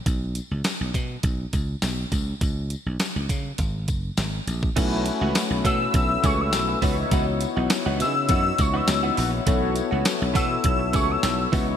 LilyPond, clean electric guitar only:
\new Staff \with { instrumentName = "Clean electric guitar" } { \time 4/4 \key b \mixolydian \tempo 4 = 102 r1 | r1 | <e a cis' fis'>8 r16 <e a cis' fis'>16 r8 <e a cis' fis'>16 r8. <e a cis' gis'>16 r8. <e b dis' fis'>16 r16 | <e b dis' fis'>16 r8 <e b dis' fis'>16 r16 <e b dis' fis'>16 <e b dis' gis'>16 r16 <e b dis' fis'>16 r8 <e b dis' fis'>16 r16 <e b dis' fis'>16 <e b dis' fis'>16 r16 |
<e a cis' fis'>8 r16 <e a cis' fis'>16 r8 <e a cis' fis'>16 r8. <e a cis' gis'>16 r8. <e b dis' fis'>16 r16 | }